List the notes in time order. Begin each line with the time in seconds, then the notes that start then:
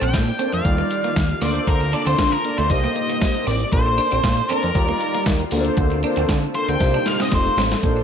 Already playing: A#3 A4 D5
0.01 A#1 C4 G5, closed hi-hat
0.14 A#2, kick, snare, closed hi-hat
0.39 A#3 C4 D4 A4 C5, closed hi-hat
0.53 F2 F5, closed hi-hat
0.64 D#2 D#3 G3 D#4 F4 G4 D5, kick, closed hi-hat
0.78 G3 A#3 D#4 F4 D5
0.91 muted clean electric guitar stroke, closed hi-hat
1.04 A#3, closed hi-hat
1.16 D#2, kick, snare, closed hi-hat
1.29 closed hi-hat
1.41 D2 D3 A#3 C4 D4 A4 C5 D5, open hi-hat
1.55 closed hi-hat
1.67 D2 A#4, kick, closed hi-hat
1.81 muted clean electric guitar stroke
1.93 A#3 D4 A4 D5, closed hi-hat
2.06 D2 C4 C5, closed hi-hat
2.18 D3 A#3, kick, snare, closed hi-hat
2.32 A#4
2.44 A#3 D4 A4 D5, muted clean electric guitar stroke, closed hi-hat
2.58 D2 A3 C5, closed hi-hat
2.70 C2 C3 G3 A#3 D#4 G4 C5 D#5, kick, closed hi-hat
2.84 A#3
2.96 muted clean electric guitar stroke, closed hi-hat
3.09 A#3, closed hi-hat
3.21 kick, snare, closed hi-hat
3.35 closed hi-hat
3.47 A1 C4 D5, open hi-hat
3.60 closed hi-hat
3.72 A#1 A#3 D4 A4 C5 D5, kick, closed hi-hat
3.86 muted clean electric guitar stroke
3.98 D4, closed hi-hat
4.11 A#1 C4, closed hi-hat
4.23 A#2, kick, snare, closed hi-hat
4.49 A#3 C4 D4 A4 A#4 D5, closed hi-hat
4.63 F2, closed hi-hat
4.75 D#2 D#3 G3 D#4 F4 G4 D5, kick, closed hi-hat
4.89 G3 A#3 D#4 F4 D5
5.01 muted clean electric guitar stroke, closed hi-hat
5.14 A#3, closed hi-hat
5.26 D#2, kick, snare, closed hi-hat
5.39 closed hi-hat
5.51 D2 D3 A#3 C4 D4 A4 A#4, open hi-hat
5.60 C5
5.65 closed hi-hat
5.77 D2, kick, closed hi-hat
5.90 muted clean electric guitar stroke, closed hi-hat
6.03 A#3 D4 A4 C5, closed hi-hat
6.16 D2 C4, closed hi-hat
6.29 D3 C4, kick, snare, closed hi-hat
6.54 A#3 D4 A4 C5, muted clean electric guitar stroke, closed hi-hat
6.68 D2 A#3 G5, closed hi-hat
6.80 C2 C3 G3 A#3 D#4 G4 C5, kick, snare, closed hi-hat
6.94 D4, closed hi-hat
7.06 F5, muted clean electric guitar stroke, snare, closed hi-hat
7.20 C4 D#5, snare, closed hi-hat
7.32 F1 F3 A3 C4 D#4 F4 A4 C5, kick, snare, closed hi-hat
7.46 closed hi-hat
7.57 A1 C4, snare, open hi-hat
7.71 snare, closed hi-hat
7.83 A#1 A#3 C4 D4 A4 C5, kick, closed hi-hat
7.97 muted clean electric guitar stroke